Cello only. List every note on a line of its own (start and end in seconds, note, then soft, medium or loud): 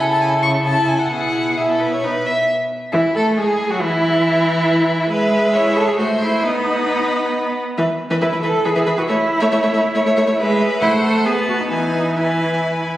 0.00 1.08 C#3 medium
1.12 2.27 B2 soft
2.93 3.01 E4 medium
3.15 3.23 A4 medium
3.38 3.72 G#4 medium
3.71 3.82 F#4 medium
3.81 5.10 E4 medium
5.55 5.78 E4 medium
5.77 5.89 A4 medium
5.88 5.98 G#4 medium
5.99 6.07 F#4 medium
6.21 6.45 E4 medium
6.43 7.33 D#4 medium
8.22 8.42 E4 medium
8.44 8.67 A4 medium
8.65 9.00 G#4 medium
8.98 9.09 F#4 medium
9.09 10.36 E4 medium
10.82 10.90 E4 loud
11.04 11.25 A4 medium
11.26 11.34 G#4 medium
11.49 11.59 F#4 medium
11.60 11.64 D#4 medium
11.70 12.19 D#4 medium
12.17 12.86 E4 medium